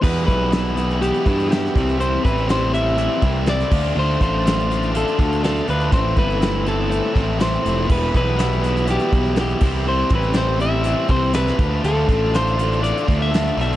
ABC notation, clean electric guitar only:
X:1
M:4/4
L:1/16
Q:1/4=122
K:Ddor
V:1 name="Clean electric guitar"
B2 B6 G4 G4 | c2 B2 c2 e6 d4 | c2 c6 A4 A2 B2 | c2 B4 A6 c4 |
B2 B6 G4 G4 | c2 B2 c2 e4 c2 B4 | A4 c4 d3 e3 e2 |]